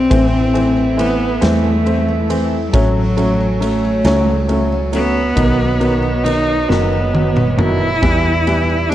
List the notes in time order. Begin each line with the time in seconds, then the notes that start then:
Already playing: G3 C4 E4
0.10 A1 E3 A3 C4 E4 A4 E5, kick, ride
0.33 C4
0.53 E3 A3 C4 E4, ride
0.77 E3
0.97 E3 A3 B3 C4, ride
1.20 E3
1.41 E2 E3 A3 C4, snare, ride
1.64 C4
1.85 A3 C4 E4, ride
2.08 E3
2.29 E3 A3 C4, ride
2.52 E3
2.67 G3
2.73 A1 F#3 A3 C#4 F#4 C#5, kick, ride
2.96 A3
3.17 F#3 A3 C#4, ride
3.40 F#3
3.60 F#3 A3 C#4, ride
3.84 F#3
4.04 C#2 F#3 A3 C#4, snare, ride
4.29 A3
4.48 F#3 A3 C#4, ride
4.72 F#3
4.92 F#3 A3 B3 C#4, ride
5.16 F#3
5.36 B1 D#3 F#3 B3 B4 D#5, kick, ride
5.60 B3
5.80 D#3 F#3 B3 D#4, ride
6.03 F#3
6.24 D#3 F#3 B3 D#4, ride
6.48 F#3
6.69 F#1 D#3 F#3 B3, snare
6.92 B3
7.13 F#3 B3, high tom
7.36 F#3, mid tom
7.58 D#3 F#3 B3 E4, mid tom
7.80 F#3
8.02 E2 E3 G3 B3 G4 E5, kick, splash
8.24 B3
8.47 E3 G3 B3 E4, ride
8.70 G3
8.89 E3 G3 B3 D4, ride